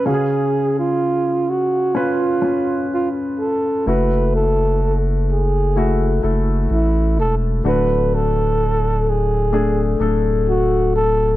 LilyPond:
<<
  \new Staff \with { instrumentName = "Flugelhorn" } { \time 4/4 \key fis \minor \tempo 4 = 63 gis'8. eis'8. fis'8 eis'4 eis'8 a'8 | b'8 a'8. r16 gis'4 r8 e'8 a'8 | b'8 a'4 gis'4 r8 fis'8 a'8 | }
  \new Staff \with { instrumentName = "Grand piano" } { \time 4/4 \key fis \minor <cis' fis' gis' eis''>2 <cis' eis' b'>8 <cis' eis'>4. | <a e' fis'>2 <a e' fis'>8 <a e' a'>4. | <a d' fis'>2 <a d' gis'>8 <a d' a'>4. | }
  \new Staff \with { instrumentName = "Grand piano" } { \clef bass \time 4/4 \key fis \minor cis4. r2 r8 | r1 | d4. r2 r8 | }
  \new Staff \with { instrumentName = "Sub bass" } { \clef bass \time 4/4 \key fis \minor r1 | fis,,2~ fis,,8 fis,,8 a,,8 e,,8 | d,,2~ d,,8 d,,4. | }
>>